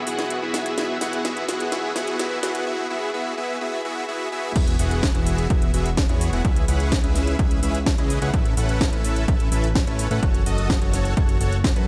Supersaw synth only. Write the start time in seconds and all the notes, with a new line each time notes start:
0.07 B3 E4 F#4 G#4 F#5
0.42 B3 E4 F#4 G#4 E5
0.78 B3 E4 F#4 G#4 E5
1.01 B3 E4 F#4 G#4 F#5
1.25 B3 E4 F#4 G#4 E5
1.48 B3 E4 F#4 G#4 F#5
1.72 B3 E4 F#4 G#4 E5
1.96 B3 E4 F#4 G#4 F#5
2.19 B3 E4 F#4 G#4 E5
2.43 B3 E4 F#4 G#4 F#5
2.67 B3 E4 F#4 G#4 E5
2.90 B3 E4 F#4 G#4 E5
3.14 B3 E4 F#4 G#4 E5
3.37 B3 E4 F#4 G#4 E5
3.61 B3 E4 F#4 G#4 E5
3.85 B3 E4 F#4 G#4 E5
4.08 B3 E4 F#4 G#4 E5
4.32 B3 E4 F#4 G#4 E5
4.56 F#4 G#4
4.79 B3 E4 F#4 G#4 F#5
5.15 B3 E4 F#4 G#4 E5
5.50 B3 E4 F#4 G#4 E5
5.74 B3 E4 F#4 G#4 E5
6.09 B3 E4 F#4 G#4 C#5
6.33 B3 E4 F#4 G#4 F#5
6.45 E4 G#4 E5
6.68 C#4 E4 G#4 B4 F#5
7.04 C#4 E4 G#4 B4 E5
7.39 C#4 E4 G#4 B4 E5
7.63 C#4 E4 G#4 B4 E5
7.98 C#4 E4 G#4 B4 D#5
8.22 C#4 E4 G#4 B4 F#5
8.34 C#4 E4 B4
8.57 C#4 E4 A4 B4 F#5
8.93 C#4 E4 A4 B4 E5
9.28 C#4 B4
9.52 C#4 E4 A4 B4 E5
9.87 C#4 E4 A4 B4 C#5
10.11 C#4 E4 A4 B4 F#5
10.23 F#4 A4 C#5
10.46 F#4 A4 D#5
10.82 F#4 A4 C#5
11.17 F#4 C#5
11.41 F#4 A4 C#5
11.76 F#4 A4 B4